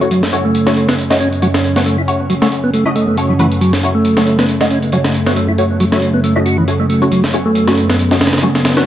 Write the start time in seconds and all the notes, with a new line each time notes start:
Already playing: F#2 C#3, downlifter
0.01 A3 C#4 F#4 C#5, closed hi-hat
0.10 F#3 C#4, closed hi-hat
0.23 snare
0.33 A3 C#4 F#4 C#5, closed hi-hat
0.45 A3
0.55 closed hi-hat
0.67 A3 C#4 F#4 C#5, snare
0.77 closed hi-hat
0.88 B3, snare
0.98 closed hi-hat
1.10 A3 C#4 F#4 D#5, snare
1.20 C#4, closed hi-hat
1.32 closed hi-hat
1.42 F#3 A3 C#4 F#4 C#5, closed hi-hat
1.54 snare
1.64 closed hi-hat
1.76 A3 B3 C#4 F#4 C#5, snare
1.86 A3, closed hi-hat
1.98 E4
2.08 A3 C#4 F#4 C#5, closed hi-hat
2.30 F#3, closed hi-hat
2.42 A3 C#4 F#4 C#5, snare
2.52 closed hi-hat
2.64 B3
2.73 A3, closed hi-hat
2.85 A3 C#4 E4 F#4 D#5
2.95 A3, closed hi-hat
3.07 A3
3.17 A3 C#4 F#4 C#5, closed hi-hat
3.29 F#3
3.39 E3 A3 C#4 F#4 B4, closed hi-hat
3.51 closed hi-hat
3.61 F#3 A3, closed hi-hat
3.73 snare
3.83 A3 C#4 F#4 C#5, closed hi-hat
3.95 A3
4.05 closed hi-hat
4.17 A3 C#4 F#4 C#5, snare
4.27 closed hi-hat
4.39 B3, snare
4.49 closed hi-hat
4.61 A3 C#4 F#4 D#5, snare
4.70 C#4, closed hi-hat
4.82 closed hi-hat
4.92 F#3 A3 C#4 F#4 C#5, closed hi-hat
5.04 snare
5.14 closed hi-hat
5.26 A3 B3 C#4 F#4 C#5, snare
5.36 A3, closed hi-hat
5.49 E4
5.58 A3 C#4 F#4 C#5, closed hi-hat
5.80 F#3, closed hi-hat
5.92 A3 C#4 F#4 C#5, snare
6.02 closed hi-hat
6.14 B3
6.24 A3, closed hi-hat
6.36 A3 C#4 E4 F#4 D#5
6.46 F#4, closed hi-hat
6.58 E3
6.68 A3 C#4 F#4 C#5, closed hi-hat
6.80 A3
6.89 A3, closed hi-hat
7.02 A3 C#4 F#4 C#5, closed hi-hat
7.11 F#3 B3, closed hi-hat
7.24 snare
7.33 A3 C#4 F#4 C#5, closed hi-hat
7.46 A3
7.55 closed hi-hat
7.68 A3 C#4 F#4 C#5, snare
7.77 closed hi-hat
7.89 B3, snare
7.99 closed hi-hat
8.11 A3 C#4 F#4 D#5, snare
8.21 C#4, snare, closed hi-hat
8.27 snare, closed hi-hat
8.33 snare, closed hi-hat
8.38 snare, closed hi-hat
8.43 F#3 A3 C#4 F#4 C#5, closed hi-hat
8.55 snare
8.65 snare, closed hi-hat
8.77 A3 B3 C#4 F#4 C#5, snare, closed hi-hat